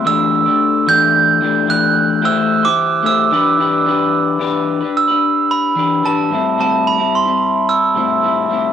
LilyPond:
<<
  \new Staff \with { instrumentName = "Glockenspiel" } { \time 4/4 \key e \minor \tempo 4 = 110 e'''4. g'''4. fis'''4 | e'''8. d'''8. e'''4. r4 | r4 e'''4 b''4 a''4 | a''8 b''8 c'''4 e'''4 r4 | }
  \new Staff \with { instrumentName = "Clean electric guitar" } { \time 4/4 \key e \minor <e a d' g'>8. <a d' g'>8. <e a d' g'>4 <e a d' g'>8 <e a d' g'>4 | <a e' g' c''>8. <e' g' c''>8. <a e' g' c''>8 <e d' g' b'>8 <e d' g' b'>8 <e d' g' b'>4 | <e d' g' b'>8. <d' g' b'>8 <d' g' b'>4~ <d' g' b'>16 <e d' g' b'>8 <e d' g' b'>8 <a, g c' e'>8 | <a, g c' e'>8. <g c' e'>8 <g c' e'>4~ <g c' e'>16 <a, g c' e'>8 <a, g c' e'>8 <a, g c' e'>8 | }
>>